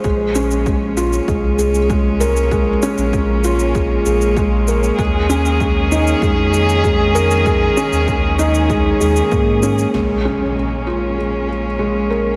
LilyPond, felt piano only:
\new Staff \with { instrumentName = "Felt piano" } { \time 4/4 \key bes \minor \tempo 4 = 97 aes8 des'8 aes8 f'8 aes8 aes'8 aes8 bes'8 | aes8 des'8 aes8 f'8 aes8 aes'8 aes8 bes'8 | aes8 des'8 aes8 ees'8 aes8 aes'8 aes8 bes'8 | aes8 des'8 aes8 ees'8 aes8 aes8 bes8 des'8 |
aes8 des'8 aes8 f'8 aes8 aes'8 aes8 bes'8 | }